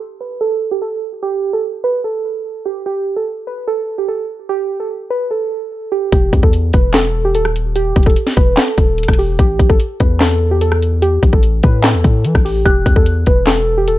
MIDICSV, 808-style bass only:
0, 0, Header, 1, 2, 480
1, 0, Start_track
1, 0, Key_signature, 1, "minor"
1, 0, Tempo, 408163
1, 1443, Time_signature, 4, 2, 24, 8
1, 16449, End_track
2, 0, Start_track
2, 0, Title_t, "808-style bass"
2, 0, Program_c, 0, 38
2, 7203, Note_on_c, 0, 28, 117
2, 7433, Note_off_c, 0, 28, 0
2, 7442, Note_on_c, 0, 40, 110
2, 7903, Note_off_c, 0, 40, 0
2, 7924, Note_on_c, 0, 28, 109
2, 8643, Note_on_c, 0, 27, 101
2, 8660, Note_off_c, 0, 28, 0
2, 9327, Note_off_c, 0, 27, 0
2, 9363, Note_on_c, 0, 28, 110
2, 9593, Note_off_c, 0, 28, 0
2, 9843, Note_on_c, 0, 28, 107
2, 10073, Note_off_c, 0, 28, 0
2, 10322, Note_on_c, 0, 27, 102
2, 10668, Note_off_c, 0, 27, 0
2, 10684, Note_on_c, 0, 28, 103
2, 11029, Note_off_c, 0, 28, 0
2, 11043, Note_on_c, 0, 33, 117
2, 11273, Note_off_c, 0, 33, 0
2, 11283, Note_on_c, 0, 33, 111
2, 11513, Note_off_c, 0, 33, 0
2, 11765, Note_on_c, 0, 40, 107
2, 13157, Note_off_c, 0, 40, 0
2, 13203, Note_on_c, 0, 33, 112
2, 13664, Note_off_c, 0, 33, 0
2, 13684, Note_on_c, 0, 45, 108
2, 14043, Note_on_c, 0, 40, 102
2, 14061, Note_off_c, 0, 45, 0
2, 14157, Note_off_c, 0, 40, 0
2, 14163, Note_on_c, 0, 45, 107
2, 14403, Note_on_c, 0, 52, 99
2, 14420, Note_off_c, 0, 45, 0
2, 14517, Note_off_c, 0, 52, 0
2, 14524, Note_on_c, 0, 33, 103
2, 14869, Note_off_c, 0, 33, 0
2, 14883, Note_on_c, 0, 28, 117
2, 15113, Note_off_c, 0, 28, 0
2, 15123, Note_on_c, 0, 40, 109
2, 15584, Note_off_c, 0, 40, 0
2, 15603, Note_on_c, 0, 28, 109
2, 16323, Note_on_c, 0, 27, 97
2, 16341, Note_off_c, 0, 28, 0
2, 16449, Note_off_c, 0, 27, 0
2, 16449, End_track
0, 0, End_of_file